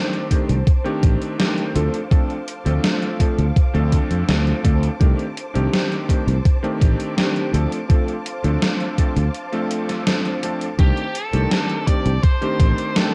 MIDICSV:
0, 0, Header, 1, 6, 480
1, 0, Start_track
1, 0, Tempo, 722892
1, 1406, Time_signature, 4, 2, 24, 8
1, 8728, End_track
2, 0, Start_track
2, 0, Title_t, "String machine"
2, 0, Program_c, 0, 50
2, 0, Note_on_c, 0, 72, 81
2, 0, Note_on_c, 0, 81, 78
2, 0, Note_on_c, 0, 86, 94
2, 1138, Note_off_c, 0, 81, 0
2, 1165, Note_on_c, 0, 77, 77
2, 1165, Note_on_c, 0, 81, 73
2, 3298, Note_off_c, 0, 72, 0
2, 3304, Note_off_c, 0, 77, 0
2, 3325, Note_on_c, 0, 72, 84
2, 4989, Note_off_c, 0, 72, 0
2, 5007, Note_on_c, 0, 72, 84
2, 5007, Note_on_c, 0, 77, 74
2, 7145, Note_off_c, 0, 72, 0
2, 7145, Note_off_c, 0, 77, 0
2, 7164, Note_on_c, 0, 72, 84
2, 8728, Note_off_c, 0, 72, 0
2, 8728, Note_off_c, 0, 81, 0
2, 8728, Note_off_c, 0, 86, 0
2, 8728, End_track
3, 0, Start_track
3, 0, Title_t, "Lead electric guitar"
3, 0, Program_c, 1, 29
3, 7170, Note_on_c, 1, 67, 90
3, 7405, Note_on_c, 1, 69, 101
3, 7415, Note_off_c, 1, 67, 0
3, 7883, Note_off_c, 1, 69, 0
3, 7886, Note_on_c, 1, 74, 102
3, 8123, Note_off_c, 1, 74, 0
3, 8126, Note_on_c, 1, 72, 103
3, 8607, Note_on_c, 1, 69, 91
3, 8620, Note_off_c, 1, 72, 0
3, 8728, Note_off_c, 1, 69, 0
3, 8728, End_track
4, 0, Start_track
4, 0, Title_t, "Electric grand piano"
4, 0, Program_c, 2, 2
4, 0, Note_on_c, 2, 51, 83
4, 0, Note_on_c, 2, 57, 76
4, 0, Note_on_c, 2, 60, 76
4, 0, Note_on_c, 2, 62, 76
4, 0, Note_on_c, 2, 67, 91
4, 175, Note_off_c, 2, 51, 0
4, 177, Note_off_c, 2, 57, 0
4, 178, Note_off_c, 2, 60, 0
4, 179, Note_off_c, 2, 62, 0
4, 180, Note_off_c, 2, 67, 0
4, 200, Note_on_c, 2, 51, 70
4, 202, Note_on_c, 2, 57, 68
4, 206, Note_on_c, 2, 60, 66
4, 207, Note_on_c, 2, 62, 64
4, 210, Note_on_c, 2, 67, 78
4, 362, Note_off_c, 2, 51, 0
4, 363, Note_off_c, 2, 57, 0
4, 365, Note_off_c, 2, 60, 0
4, 365, Note_off_c, 2, 62, 0
4, 367, Note_off_c, 2, 67, 0
4, 559, Note_on_c, 2, 51, 91
4, 562, Note_on_c, 2, 57, 82
4, 564, Note_on_c, 2, 60, 83
4, 567, Note_on_c, 2, 62, 82
4, 570, Note_on_c, 2, 67, 96
4, 894, Note_off_c, 2, 51, 0
4, 895, Note_off_c, 2, 57, 0
4, 896, Note_off_c, 2, 60, 0
4, 898, Note_off_c, 2, 62, 0
4, 899, Note_off_c, 2, 67, 0
4, 918, Note_on_c, 2, 51, 82
4, 920, Note_on_c, 2, 57, 75
4, 923, Note_on_c, 2, 60, 76
4, 926, Note_on_c, 2, 62, 73
4, 928, Note_on_c, 2, 67, 88
4, 1133, Note_off_c, 2, 51, 0
4, 1135, Note_off_c, 2, 57, 0
4, 1136, Note_off_c, 2, 60, 0
4, 1137, Note_off_c, 2, 62, 0
4, 1138, Note_off_c, 2, 67, 0
4, 1158, Note_on_c, 2, 53, 82
4, 1161, Note_on_c, 2, 57, 76
4, 1164, Note_on_c, 2, 60, 76
4, 1166, Note_on_c, 2, 62, 75
4, 1170, Note_on_c, 2, 69, 91
4, 1321, Note_off_c, 2, 53, 0
4, 1322, Note_off_c, 2, 57, 0
4, 1324, Note_off_c, 2, 60, 0
4, 1325, Note_off_c, 2, 62, 0
4, 1327, Note_off_c, 2, 69, 0
4, 1399, Note_on_c, 2, 53, 75
4, 1401, Note_on_c, 2, 57, 67
4, 1404, Note_on_c, 2, 60, 69
4, 1407, Note_on_c, 2, 62, 70
4, 1410, Note_on_c, 2, 69, 84
4, 1561, Note_off_c, 2, 53, 0
4, 1562, Note_off_c, 2, 57, 0
4, 1564, Note_off_c, 2, 60, 0
4, 1565, Note_off_c, 2, 62, 0
4, 1567, Note_off_c, 2, 69, 0
4, 1761, Note_on_c, 2, 53, 84
4, 1763, Note_on_c, 2, 57, 76
4, 1767, Note_on_c, 2, 60, 76
4, 1768, Note_on_c, 2, 62, 76
4, 1772, Note_on_c, 2, 69, 92
4, 2095, Note_off_c, 2, 53, 0
4, 2096, Note_off_c, 2, 57, 0
4, 2098, Note_off_c, 2, 60, 0
4, 2098, Note_off_c, 2, 62, 0
4, 2100, Note_off_c, 2, 69, 0
4, 2119, Note_on_c, 2, 53, 72
4, 2122, Note_on_c, 2, 57, 66
4, 2124, Note_on_c, 2, 60, 66
4, 2127, Note_on_c, 2, 62, 66
4, 2129, Note_on_c, 2, 69, 79
4, 2281, Note_off_c, 2, 53, 0
4, 2283, Note_off_c, 2, 57, 0
4, 2283, Note_off_c, 2, 60, 0
4, 2285, Note_off_c, 2, 62, 0
4, 2286, Note_off_c, 2, 69, 0
4, 2479, Note_on_c, 2, 53, 90
4, 2483, Note_on_c, 2, 57, 84
4, 2484, Note_on_c, 2, 60, 82
4, 2487, Note_on_c, 2, 62, 85
4, 2490, Note_on_c, 2, 69, 103
4, 2814, Note_off_c, 2, 53, 0
4, 2815, Note_off_c, 2, 57, 0
4, 2816, Note_off_c, 2, 60, 0
4, 2817, Note_off_c, 2, 62, 0
4, 2819, Note_off_c, 2, 69, 0
4, 2839, Note_on_c, 2, 53, 81
4, 2842, Note_on_c, 2, 57, 73
4, 2844, Note_on_c, 2, 60, 76
4, 2847, Note_on_c, 2, 62, 73
4, 2850, Note_on_c, 2, 69, 90
4, 3054, Note_off_c, 2, 53, 0
4, 3055, Note_off_c, 2, 57, 0
4, 3057, Note_off_c, 2, 60, 0
4, 3058, Note_off_c, 2, 62, 0
4, 3059, Note_off_c, 2, 69, 0
4, 3078, Note_on_c, 2, 53, 83
4, 3079, Note_on_c, 2, 57, 75
4, 3083, Note_on_c, 2, 60, 77
4, 3084, Note_on_c, 2, 62, 78
4, 3087, Note_on_c, 2, 69, 91
4, 3241, Note_off_c, 2, 53, 0
4, 3241, Note_off_c, 2, 57, 0
4, 3243, Note_off_c, 2, 60, 0
4, 3244, Note_off_c, 2, 62, 0
4, 3245, Note_off_c, 2, 69, 0
4, 3318, Note_on_c, 2, 51, 78
4, 3321, Note_on_c, 2, 57, 72
4, 3323, Note_on_c, 2, 60, 70
4, 3326, Note_on_c, 2, 62, 68
4, 3328, Note_on_c, 2, 67, 83
4, 3481, Note_off_c, 2, 51, 0
4, 3482, Note_off_c, 2, 57, 0
4, 3483, Note_off_c, 2, 60, 0
4, 3485, Note_off_c, 2, 62, 0
4, 3486, Note_off_c, 2, 67, 0
4, 3678, Note_on_c, 2, 51, 82
4, 3680, Note_on_c, 2, 57, 78
4, 3682, Note_on_c, 2, 60, 77
4, 3685, Note_on_c, 2, 62, 76
4, 3688, Note_on_c, 2, 67, 92
4, 4013, Note_off_c, 2, 51, 0
4, 4014, Note_off_c, 2, 57, 0
4, 4015, Note_off_c, 2, 60, 0
4, 4017, Note_off_c, 2, 62, 0
4, 4018, Note_off_c, 2, 67, 0
4, 4039, Note_on_c, 2, 51, 71
4, 4043, Note_on_c, 2, 57, 64
4, 4045, Note_on_c, 2, 60, 66
4, 4047, Note_on_c, 2, 62, 65
4, 4049, Note_on_c, 2, 67, 80
4, 4201, Note_off_c, 2, 51, 0
4, 4203, Note_off_c, 2, 57, 0
4, 4204, Note_off_c, 2, 60, 0
4, 4205, Note_off_c, 2, 62, 0
4, 4206, Note_off_c, 2, 67, 0
4, 4400, Note_on_c, 2, 51, 92
4, 4402, Note_on_c, 2, 57, 83
4, 4405, Note_on_c, 2, 60, 82
4, 4408, Note_on_c, 2, 62, 83
4, 4411, Note_on_c, 2, 67, 101
4, 4734, Note_off_c, 2, 51, 0
4, 4735, Note_off_c, 2, 57, 0
4, 4737, Note_off_c, 2, 60, 0
4, 4738, Note_off_c, 2, 62, 0
4, 4739, Note_off_c, 2, 67, 0
4, 4757, Note_on_c, 2, 51, 82
4, 4758, Note_on_c, 2, 57, 73
4, 4762, Note_on_c, 2, 60, 75
4, 4765, Note_on_c, 2, 62, 74
4, 4767, Note_on_c, 2, 67, 89
4, 4973, Note_off_c, 2, 51, 0
4, 4974, Note_off_c, 2, 57, 0
4, 4975, Note_off_c, 2, 60, 0
4, 4977, Note_off_c, 2, 62, 0
4, 4978, Note_off_c, 2, 67, 0
4, 4997, Note_on_c, 2, 53, 85
4, 5001, Note_on_c, 2, 57, 76
4, 5003, Note_on_c, 2, 60, 76
4, 5005, Note_on_c, 2, 62, 76
4, 5008, Note_on_c, 2, 69, 94
4, 5160, Note_off_c, 2, 53, 0
4, 5162, Note_off_c, 2, 57, 0
4, 5163, Note_off_c, 2, 60, 0
4, 5164, Note_off_c, 2, 62, 0
4, 5166, Note_off_c, 2, 69, 0
4, 5238, Note_on_c, 2, 53, 74
4, 5241, Note_on_c, 2, 57, 68
4, 5244, Note_on_c, 2, 60, 70
4, 5246, Note_on_c, 2, 62, 67
4, 5250, Note_on_c, 2, 69, 82
4, 5401, Note_off_c, 2, 53, 0
4, 5402, Note_off_c, 2, 57, 0
4, 5404, Note_off_c, 2, 60, 0
4, 5404, Note_off_c, 2, 62, 0
4, 5406, Note_off_c, 2, 69, 0
4, 5601, Note_on_c, 2, 53, 81
4, 5603, Note_on_c, 2, 57, 77
4, 5605, Note_on_c, 2, 60, 76
4, 5607, Note_on_c, 2, 62, 76
4, 5610, Note_on_c, 2, 69, 94
4, 5934, Note_off_c, 2, 53, 0
4, 5935, Note_off_c, 2, 57, 0
4, 5936, Note_off_c, 2, 60, 0
4, 5937, Note_off_c, 2, 62, 0
4, 5939, Note_off_c, 2, 69, 0
4, 5962, Note_on_c, 2, 53, 71
4, 5963, Note_on_c, 2, 57, 67
4, 5966, Note_on_c, 2, 60, 68
4, 5968, Note_on_c, 2, 62, 65
4, 5970, Note_on_c, 2, 69, 80
4, 6123, Note_off_c, 2, 53, 0
4, 6123, Note_off_c, 2, 57, 0
4, 6125, Note_off_c, 2, 60, 0
4, 6125, Note_off_c, 2, 62, 0
4, 6126, Note_off_c, 2, 69, 0
4, 6322, Note_on_c, 2, 53, 90
4, 6325, Note_on_c, 2, 57, 82
4, 6329, Note_on_c, 2, 60, 82
4, 6332, Note_on_c, 2, 62, 82
4, 6333, Note_on_c, 2, 69, 97
4, 6655, Note_off_c, 2, 53, 0
4, 6657, Note_off_c, 2, 57, 0
4, 6658, Note_off_c, 2, 60, 0
4, 6660, Note_off_c, 2, 62, 0
4, 6661, Note_off_c, 2, 69, 0
4, 6682, Note_on_c, 2, 53, 83
4, 6685, Note_on_c, 2, 57, 73
4, 6689, Note_on_c, 2, 60, 73
4, 6690, Note_on_c, 2, 62, 72
4, 6693, Note_on_c, 2, 69, 89
4, 6896, Note_off_c, 2, 53, 0
4, 6897, Note_off_c, 2, 57, 0
4, 6899, Note_off_c, 2, 60, 0
4, 6899, Note_off_c, 2, 62, 0
4, 6901, Note_off_c, 2, 69, 0
4, 6922, Note_on_c, 2, 53, 84
4, 6925, Note_on_c, 2, 57, 74
4, 6926, Note_on_c, 2, 60, 75
4, 6931, Note_on_c, 2, 62, 77
4, 6932, Note_on_c, 2, 69, 92
4, 7083, Note_off_c, 2, 53, 0
4, 7084, Note_off_c, 2, 57, 0
4, 7085, Note_off_c, 2, 60, 0
4, 7087, Note_off_c, 2, 62, 0
4, 7087, Note_off_c, 2, 69, 0
4, 7161, Note_on_c, 2, 51, 74
4, 7163, Note_on_c, 2, 57, 68
4, 7164, Note_on_c, 2, 60, 70
4, 7167, Note_on_c, 2, 62, 68
4, 7170, Note_on_c, 2, 67, 84
4, 7322, Note_off_c, 2, 51, 0
4, 7323, Note_off_c, 2, 57, 0
4, 7324, Note_off_c, 2, 60, 0
4, 7325, Note_off_c, 2, 62, 0
4, 7327, Note_off_c, 2, 67, 0
4, 7520, Note_on_c, 2, 51, 85
4, 7521, Note_on_c, 2, 57, 75
4, 7524, Note_on_c, 2, 60, 76
4, 7526, Note_on_c, 2, 62, 78
4, 7529, Note_on_c, 2, 67, 91
4, 7854, Note_off_c, 2, 51, 0
4, 7855, Note_off_c, 2, 57, 0
4, 7856, Note_off_c, 2, 60, 0
4, 7857, Note_off_c, 2, 62, 0
4, 7859, Note_off_c, 2, 67, 0
4, 7882, Note_on_c, 2, 51, 72
4, 7885, Note_on_c, 2, 57, 66
4, 7886, Note_on_c, 2, 60, 67
4, 7889, Note_on_c, 2, 62, 66
4, 7892, Note_on_c, 2, 67, 80
4, 8043, Note_off_c, 2, 51, 0
4, 8044, Note_off_c, 2, 57, 0
4, 8045, Note_off_c, 2, 60, 0
4, 8046, Note_off_c, 2, 62, 0
4, 8048, Note_off_c, 2, 67, 0
4, 8242, Note_on_c, 2, 51, 91
4, 8245, Note_on_c, 2, 57, 83
4, 8247, Note_on_c, 2, 60, 83
4, 8248, Note_on_c, 2, 62, 81
4, 8252, Note_on_c, 2, 67, 99
4, 8575, Note_off_c, 2, 51, 0
4, 8576, Note_off_c, 2, 57, 0
4, 8577, Note_off_c, 2, 60, 0
4, 8578, Note_off_c, 2, 62, 0
4, 8580, Note_off_c, 2, 67, 0
4, 8600, Note_on_c, 2, 51, 83
4, 8604, Note_on_c, 2, 57, 75
4, 8606, Note_on_c, 2, 60, 77
4, 8608, Note_on_c, 2, 62, 74
4, 8611, Note_on_c, 2, 67, 89
4, 8728, Note_off_c, 2, 51, 0
4, 8728, Note_off_c, 2, 57, 0
4, 8728, Note_off_c, 2, 60, 0
4, 8728, Note_off_c, 2, 62, 0
4, 8728, Note_off_c, 2, 67, 0
4, 8728, End_track
5, 0, Start_track
5, 0, Title_t, "Fretless electric bass"
5, 0, Program_c, 3, 35
5, 327, Note_on_c, 3, 36, 96
5, 404, Note_off_c, 3, 36, 0
5, 685, Note_on_c, 3, 33, 78
5, 763, Note_off_c, 3, 33, 0
5, 1166, Note_on_c, 3, 38, 99
5, 1244, Note_off_c, 3, 38, 0
5, 1766, Note_on_c, 3, 38, 79
5, 1843, Note_off_c, 3, 38, 0
5, 2247, Note_on_c, 3, 38, 97
5, 2324, Note_off_c, 3, 38, 0
5, 2486, Note_on_c, 3, 38, 96
5, 2642, Note_off_c, 3, 38, 0
5, 2727, Note_on_c, 3, 41, 81
5, 2804, Note_off_c, 3, 41, 0
5, 2846, Note_on_c, 3, 38, 98
5, 3002, Note_off_c, 3, 38, 0
5, 3085, Note_on_c, 3, 38, 94
5, 3241, Note_off_c, 3, 38, 0
5, 3325, Note_on_c, 3, 36, 95
5, 3404, Note_off_c, 3, 36, 0
5, 3688, Note_on_c, 3, 36, 79
5, 3765, Note_off_c, 3, 36, 0
5, 4165, Note_on_c, 3, 36, 96
5, 4243, Note_off_c, 3, 36, 0
5, 4524, Note_on_c, 3, 33, 79
5, 4603, Note_off_c, 3, 33, 0
5, 5004, Note_on_c, 3, 38, 96
5, 5083, Note_off_c, 3, 38, 0
5, 5605, Note_on_c, 3, 38, 78
5, 5683, Note_off_c, 3, 38, 0
5, 6085, Note_on_c, 3, 38, 96
5, 6163, Note_off_c, 3, 38, 0
5, 7164, Note_on_c, 3, 36, 98
5, 7243, Note_off_c, 3, 36, 0
5, 7526, Note_on_c, 3, 36, 80
5, 7604, Note_off_c, 3, 36, 0
5, 8006, Note_on_c, 3, 36, 98
5, 8084, Note_off_c, 3, 36, 0
5, 8364, Note_on_c, 3, 33, 81
5, 8443, Note_off_c, 3, 33, 0
5, 8728, End_track
6, 0, Start_track
6, 0, Title_t, "Drums"
6, 87, Note_on_c, 9, 42, 24
6, 154, Note_off_c, 9, 42, 0
6, 205, Note_on_c, 9, 36, 59
6, 205, Note_on_c, 9, 42, 88
6, 271, Note_off_c, 9, 36, 0
6, 272, Note_off_c, 9, 42, 0
6, 327, Note_on_c, 9, 42, 49
6, 393, Note_off_c, 9, 42, 0
6, 444, Note_on_c, 9, 36, 112
6, 447, Note_on_c, 9, 42, 48
6, 511, Note_off_c, 9, 36, 0
6, 514, Note_off_c, 9, 42, 0
6, 568, Note_on_c, 9, 42, 24
6, 635, Note_off_c, 9, 42, 0
6, 684, Note_on_c, 9, 36, 104
6, 686, Note_on_c, 9, 42, 85
6, 751, Note_off_c, 9, 36, 0
6, 752, Note_off_c, 9, 42, 0
6, 808, Note_on_c, 9, 42, 50
6, 874, Note_off_c, 9, 42, 0
6, 927, Note_on_c, 9, 38, 115
6, 927, Note_on_c, 9, 42, 49
6, 994, Note_off_c, 9, 38, 0
6, 994, Note_off_c, 9, 42, 0
6, 1047, Note_on_c, 9, 42, 26
6, 1114, Note_off_c, 9, 42, 0
6, 1166, Note_on_c, 9, 42, 84
6, 1232, Note_off_c, 9, 42, 0
6, 1288, Note_on_c, 9, 42, 48
6, 1354, Note_off_c, 9, 42, 0
6, 1404, Note_on_c, 9, 36, 110
6, 1408, Note_on_c, 9, 42, 48
6, 1471, Note_off_c, 9, 36, 0
6, 1474, Note_off_c, 9, 42, 0
6, 1528, Note_on_c, 9, 42, 24
6, 1594, Note_off_c, 9, 42, 0
6, 1646, Note_on_c, 9, 42, 85
6, 1713, Note_off_c, 9, 42, 0
6, 1767, Note_on_c, 9, 42, 48
6, 1834, Note_off_c, 9, 42, 0
6, 1886, Note_on_c, 9, 38, 108
6, 1886, Note_on_c, 9, 42, 45
6, 1952, Note_off_c, 9, 38, 0
6, 1952, Note_off_c, 9, 42, 0
6, 2008, Note_on_c, 9, 42, 24
6, 2074, Note_off_c, 9, 42, 0
6, 2125, Note_on_c, 9, 36, 58
6, 2126, Note_on_c, 9, 42, 87
6, 2191, Note_off_c, 9, 36, 0
6, 2193, Note_off_c, 9, 42, 0
6, 2248, Note_on_c, 9, 42, 47
6, 2314, Note_off_c, 9, 42, 0
6, 2365, Note_on_c, 9, 36, 110
6, 2368, Note_on_c, 9, 42, 48
6, 2432, Note_off_c, 9, 36, 0
6, 2434, Note_off_c, 9, 42, 0
6, 2487, Note_on_c, 9, 42, 25
6, 2554, Note_off_c, 9, 42, 0
6, 2605, Note_on_c, 9, 36, 57
6, 2605, Note_on_c, 9, 42, 83
6, 2671, Note_off_c, 9, 36, 0
6, 2671, Note_off_c, 9, 42, 0
6, 2727, Note_on_c, 9, 42, 49
6, 2793, Note_off_c, 9, 42, 0
6, 2846, Note_on_c, 9, 38, 110
6, 2846, Note_on_c, 9, 42, 50
6, 2913, Note_off_c, 9, 38, 0
6, 2913, Note_off_c, 9, 42, 0
6, 2968, Note_on_c, 9, 42, 25
6, 3035, Note_off_c, 9, 42, 0
6, 3085, Note_on_c, 9, 36, 97
6, 3086, Note_on_c, 9, 42, 88
6, 3151, Note_off_c, 9, 36, 0
6, 3152, Note_off_c, 9, 42, 0
6, 3208, Note_on_c, 9, 42, 47
6, 3274, Note_off_c, 9, 42, 0
6, 3325, Note_on_c, 9, 36, 108
6, 3327, Note_on_c, 9, 42, 51
6, 3392, Note_off_c, 9, 36, 0
6, 3393, Note_off_c, 9, 42, 0
6, 3448, Note_on_c, 9, 42, 25
6, 3514, Note_off_c, 9, 42, 0
6, 3568, Note_on_c, 9, 42, 86
6, 3634, Note_off_c, 9, 42, 0
6, 3688, Note_on_c, 9, 42, 49
6, 3755, Note_off_c, 9, 42, 0
6, 3808, Note_on_c, 9, 38, 106
6, 3808, Note_on_c, 9, 42, 49
6, 3875, Note_off_c, 9, 38, 0
6, 3875, Note_off_c, 9, 42, 0
6, 3931, Note_on_c, 9, 42, 25
6, 3997, Note_off_c, 9, 42, 0
6, 4045, Note_on_c, 9, 36, 55
6, 4049, Note_on_c, 9, 42, 88
6, 4111, Note_off_c, 9, 36, 0
6, 4115, Note_off_c, 9, 42, 0
6, 4169, Note_on_c, 9, 42, 49
6, 4235, Note_off_c, 9, 42, 0
6, 4285, Note_on_c, 9, 36, 108
6, 4288, Note_on_c, 9, 42, 49
6, 4351, Note_off_c, 9, 36, 0
6, 4354, Note_off_c, 9, 42, 0
6, 4409, Note_on_c, 9, 42, 25
6, 4475, Note_off_c, 9, 42, 0
6, 4525, Note_on_c, 9, 36, 98
6, 4527, Note_on_c, 9, 42, 85
6, 4591, Note_off_c, 9, 36, 0
6, 4593, Note_off_c, 9, 42, 0
6, 4647, Note_on_c, 9, 42, 50
6, 4713, Note_off_c, 9, 42, 0
6, 4767, Note_on_c, 9, 38, 110
6, 4767, Note_on_c, 9, 42, 50
6, 4834, Note_off_c, 9, 38, 0
6, 4834, Note_off_c, 9, 42, 0
6, 4887, Note_on_c, 9, 42, 26
6, 4954, Note_off_c, 9, 42, 0
6, 5007, Note_on_c, 9, 42, 86
6, 5073, Note_off_c, 9, 42, 0
6, 5127, Note_on_c, 9, 42, 50
6, 5194, Note_off_c, 9, 42, 0
6, 5244, Note_on_c, 9, 36, 109
6, 5245, Note_on_c, 9, 42, 51
6, 5311, Note_off_c, 9, 36, 0
6, 5311, Note_off_c, 9, 42, 0
6, 5367, Note_on_c, 9, 42, 26
6, 5433, Note_off_c, 9, 42, 0
6, 5484, Note_on_c, 9, 42, 91
6, 5550, Note_off_c, 9, 42, 0
6, 5606, Note_on_c, 9, 42, 52
6, 5672, Note_off_c, 9, 42, 0
6, 5725, Note_on_c, 9, 38, 108
6, 5725, Note_on_c, 9, 42, 49
6, 5791, Note_off_c, 9, 38, 0
6, 5791, Note_off_c, 9, 42, 0
6, 5845, Note_on_c, 9, 42, 26
6, 5912, Note_off_c, 9, 42, 0
6, 5964, Note_on_c, 9, 36, 58
6, 5965, Note_on_c, 9, 42, 90
6, 6030, Note_off_c, 9, 36, 0
6, 6032, Note_off_c, 9, 42, 0
6, 6086, Note_on_c, 9, 42, 51
6, 6152, Note_off_c, 9, 42, 0
6, 6205, Note_on_c, 9, 42, 51
6, 6271, Note_off_c, 9, 42, 0
6, 6325, Note_on_c, 9, 42, 26
6, 6392, Note_off_c, 9, 42, 0
6, 6445, Note_on_c, 9, 42, 90
6, 6512, Note_off_c, 9, 42, 0
6, 6568, Note_on_c, 9, 38, 34
6, 6568, Note_on_c, 9, 42, 53
6, 6635, Note_off_c, 9, 38, 0
6, 6635, Note_off_c, 9, 42, 0
6, 6686, Note_on_c, 9, 38, 113
6, 6686, Note_on_c, 9, 42, 52
6, 6752, Note_off_c, 9, 38, 0
6, 6752, Note_off_c, 9, 42, 0
6, 6808, Note_on_c, 9, 42, 26
6, 6874, Note_off_c, 9, 42, 0
6, 6926, Note_on_c, 9, 42, 88
6, 6992, Note_off_c, 9, 42, 0
6, 7047, Note_on_c, 9, 42, 50
6, 7114, Note_off_c, 9, 42, 0
6, 7164, Note_on_c, 9, 36, 113
6, 7166, Note_on_c, 9, 42, 51
6, 7230, Note_off_c, 9, 36, 0
6, 7232, Note_off_c, 9, 42, 0
6, 7286, Note_on_c, 9, 42, 27
6, 7353, Note_off_c, 9, 42, 0
6, 7405, Note_on_c, 9, 42, 94
6, 7471, Note_off_c, 9, 42, 0
6, 7526, Note_on_c, 9, 42, 53
6, 7592, Note_off_c, 9, 42, 0
6, 7646, Note_on_c, 9, 38, 109
6, 7646, Note_on_c, 9, 42, 52
6, 7712, Note_off_c, 9, 38, 0
6, 7712, Note_off_c, 9, 42, 0
6, 7766, Note_on_c, 9, 42, 27
6, 7833, Note_off_c, 9, 42, 0
6, 7885, Note_on_c, 9, 36, 59
6, 7886, Note_on_c, 9, 42, 94
6, 7951, Note_off_c, 9, 36, 0
6, 7952, Note_off_c, 9, 42, 0
6, 8006, Note_on_c, 9, 42, 53
6, 8073, Note_off_c, 9, 42, 0
6, 8124, Note_on_c, 9, 36, 110
6, 8125, Note_on_c, 9, 42, 54
6, 8191, Note_off_c, 9, 36, 0
6, 8192, Note_off_c, 9, 42, 0
6, 8246, Note_on_c, 9, 42, 27
6, 8313, Note_off_c, 9, 42, 0
6, 8364, Note_on_c, 9, 36, 104
6, 8366, Note_on_c, 9, 42, 92
6, 8431, Note_off_c, 9, 36, 0
6, 8432, Note_off_c, 9, 42, 0
6, 8488, Note_on_c, 9, 42, 54
6, 8554, Note_off_c, 9, 42, 0
6, 8606, Note_on_c, 9, 38, 117
6, 8606, Note_on_c, 9, 42, 54
6, 8672, Note_off_c, 9, 38, 0
6, 8672, Note_off_c, 9, 42, 0
6, 8728, End_track
0, 0, End_of_file